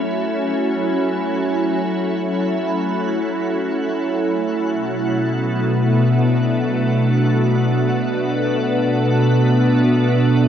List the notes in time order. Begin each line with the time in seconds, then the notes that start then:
Already playing: F#3 A3 C#4 E4 F#4 F#5 F#6
4.74 B2
5.32 B3
5.72 D4